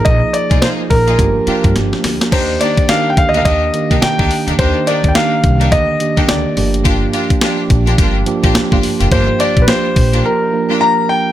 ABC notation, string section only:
X:1
M:4/4
L:1/16
Q:"Swing 16ths" 1/4=106
K:Eb
V:1 name="String section"
z3 [B,EFA] [B,EFA] z2 [B,EFA] z2 [B,DFG] z4 z | [B,DEG] z [B,DEG] z [B,DEG] z2 [B,DEG] [B,DEG] z2 [B,DEG] z [B,DEG] z [B,DEG] | [B,DEG] z [B,DEG] z [B,DEG] z2 [B,DEG] z3 [B,DEG] z4 | [B,DFG] z [B,DFG] z [B,DFG] z2 [B,DFG] [B,DFG] z2 [B,DFG] z [B,DFG] z [B,DFG] |
[B,DFG] z [B,DFG] z [B,DFG] z2 [B,DFG] z3 [B,DFG] z4 |]